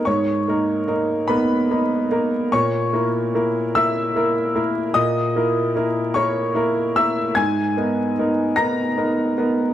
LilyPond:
\new Staff \with { instrumentName = "Grand piano" } { \time 6/8 \key gis \minor \tempo 4. = 50 << { <cis'' cis'''>4. <b b''>4. | <cis'' cis'''>4. <e'' e'''>4. | <dis'' dis'''>4. <cis'' cis'''>4 <e'' e'''>8 | <gis'' gis'''>4. <ais'' ais'''>4. | } \\ { gis,8 <ais dis' ais'>8 <ais dis' ais'>8 <ais dis' ais'>8 <ais dis' ais'>8 <ais dis' ais'>8 | ais,8 <ais e' ais'>8 <ais e' ais'>8 <ais e' ais'>8 <ais e' ais'>8 <ais e' ais'>8 | ais,8 <ais e' ais'>8 <ais e' ais'>8 <ais e' ais'>8 <ais e' ais'>8 <ais e' ais'>8 | gis,8 <b dis' ais'>8 <b dis' ais'>8 <b dis' ais'>8 <b dis' ais'>8 <b dis' ais'>8 | } >> }